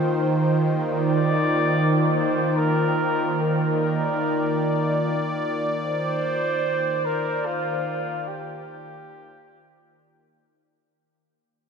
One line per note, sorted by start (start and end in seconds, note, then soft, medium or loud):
0.00 10.84 D#3 medium
0.00 10.93 D#3 medium
0.00 10.92 A#3 medium
0.00 10.84 D#4 medium
0.00 10.84 F4 medium
0.00 0.45 G4 medium
0.00 3.90 C5 medium
0.00 10.83 G5 medium
0.89 2.10 D5 medium
2.16 2.58 C5 medium
2.57 3.39 A#4 medium
3.43 5.41 A#4 medium
3.66 10.84 D5 medium
5.83 7.07 C5 loud
7.05 7.47 A#4 medium
7.45 8.29 F4 medium
8.28 10.39 G4 medium